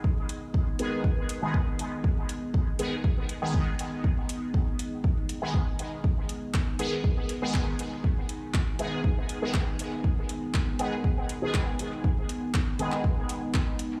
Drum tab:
HH |--x---x---x---x-|--x---x---x---x-|--x---x---x---x-|--x---x---x---x-|
CP |----------------|----------------|----------------|----x-------x---|
BD |o---o---o---o---|o---o---o---o---|o---o---o---o---|o---o---o---o---|

HH |--x---x---x---x-|--x---x---x---x-|--x---x---x---x-|
CP |----x-------x---|----x-------x---|----x--x----x---|
BD |o---o---o---o---|o---o---o---o---|o---o---o---o---|